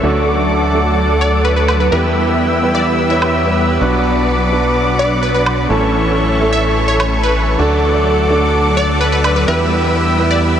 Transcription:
Already playing: A4
0.02 D2 F#3 A3 D4 F#4 A4 D5 F#5 D6
0.73 A3 D4 F#4 A4
1.21 D5
1.45 B4
1.56 B4
1.68 B4, high woodblock
1.80 B4
1.91 E2 G3 B3 E4 G4 B4 E5 G5 E6
2.62 B3 E4 G4 B4
2.75 D5
3.10 B3 E4 G4 C#5 E5
3.22 high woodblock
3.45 B3 E4 G4 B4
3.80 B1 F#3 B3 D4 F#4 B4 D5 F#5 D6
4.51 B3 D4 F#4 B4
4.99 D5
5.23 B4
5.34 B4
5.46 high woodblock
5.69 A1 E3 A3 C#4 E4 A4 C#5 E5 C#6
6.40 A3 C#4 E4 A4
6.53 E5
6.88 C#5
7.00 C#5, high woodblock
7.23 B4
7.58 D2 F#3 A3 D4 F#4 A4 D5 F#5 D6
8.29 A3 D4 F#4 A4
8.77 D5
9.01 B4
9.12 B4
9.24 B4, high woodblock
9.36 B4
9.47 E2 G3 B3 E4 G4 B4 E5 G5 E6
10.18 B3 E4 G4 B4
10.31 D5
10.42 reverse cymbal

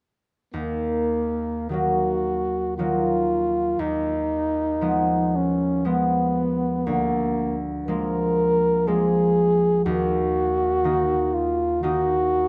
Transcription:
0.54 D#2 A#3
1.69 D#3 F#3 F#4
1.73 A#3
2.78 D#3 F#3 A#3 F4
3.79 D#2 D#4
4.81 F3 G#3 B3
5.36 C#4
5.85 F3 G#3 B3
6.86 D2 A#3
7.87 F3 G#3 A#3 A#4
8.87 F3 G#3 A#3 G#4
9.86 D#2 F#4
10.84 D#3 A#3 D#4
11.34 F4
11.83 D#3 A#3 D#4 F#4

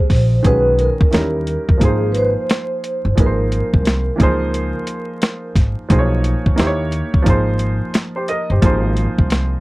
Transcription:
Already playing: C3 F3 A#3 D#4 G#4 C5
0.10 A#1, kick, snare, open hi-hat
0.43 B1 D#3 G#3 C#4 F#4 G#4 B4, kick, closed hi-hat
0.79 A#4, closed hi-hat
1.01 D#2, kick
1.11 D#2 E3 C#4 D#4 E4 A#4, snare, closed hi-hat
1.17 G3
1.47 closed hi-hat
1.69 E2, kick
1.77 G#1 F3 A#3 D#4, kick, closed hi-hat
1.83 G#4 C5
2.12 B4, closed hi-hat
2.17 C5
2.49 snare, closed hi-hat
2.84 closed hi-hat
3.05 G1
3.16 G#1 F3 A#3 D#4 G#4 A#4, kick, closed hi-hat
3.20 B4
3.26 C5
3.52 closed hi-hat
3.73 C2, kick
3.85 snare, closed hi-hat
4.16 C#2 E3 A#3 D#4, closed hi-hat
4.20 F3 G#4 C5, kick
4.54 closed hi-hat
4.87 closed hi-hat
5.22 snare, closed hi-hat
5.56 G#1, kick, snare, closed hi-hat
5.89 B1 F3 A#3 D#4 G#4 C5, kick, closed hi-hat
5.99 C#5
6.24 closed hi-hat
6.46 D#2, kick
6.56 D#2 A#3 D#4 E4 G4 C5, snare, closed hi-hat
6.67 C#5
6.92 closed hi-hat
7.14 E2, kick
7.22 G#1 F3 A#3 D#4, kick, closed hi-hat
7.28 G#4 C5
7.59 closed hi-hat
7.94 snare, closed hi-hat
8.16 G4 C5
8.28 A#4 D#5, closed hi-hat
8.50 G1 G4 C5
8.62 G#1 F3 A#3 D#4 G#4 C5, kick, closed hi-hat
8.97 closed hi-hat
9.18 C2, kick
9.30 snare, closed hi-hat

